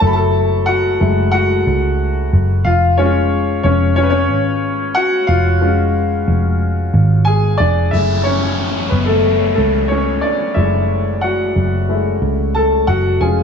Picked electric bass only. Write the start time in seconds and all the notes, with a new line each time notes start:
0.02 F#1
1.01 F#1
1.67 C#2
2.33 F#1
2.65 F1
3.64 F1
4.30 G#1
5.29 F1
6.28 F1
6.94 G#1
7.60 F1
7.93 F#1
8.92 F#1
9.58 C#2
10.56 F#1
11.56 F#1
12.22 C#2
12.88 F#1
13.21 F1